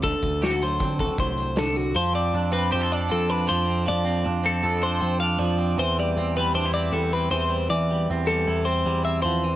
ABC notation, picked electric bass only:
X:1
M:5/4
L:1/16
Q:1/4=157
K:Flyd
V:1 name="Picked electric bass" clef=bass
D,, z D,,6 D,2 D,, z C,,8 | F,,4 F,,4 F,,4 F,,4 F,,4 | F,,4 F,,4 F,,4 F,,4 F,,4 | E,,4 E,,4 E,,4 E,,4 E,,4 |
E,,4 E,,4 E,,4 E,,4 E,,4 |]